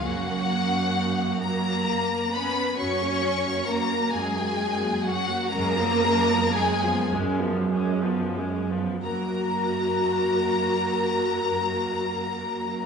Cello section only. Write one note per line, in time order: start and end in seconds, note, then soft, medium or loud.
0.06 1.39 F#3 medium
1.42 2.30 A#3 loud
2.34 2.79 B3 medium
2.79 3.66 C#4 loud
3.68 4.12 A#3 medium
4.14 5.06 G#3 medium
5.06 5.53 F#3 loud
5.53 6.56 A#3 loud
6.56 7.11 G#3 loud
9.04 12.86 A#3 medium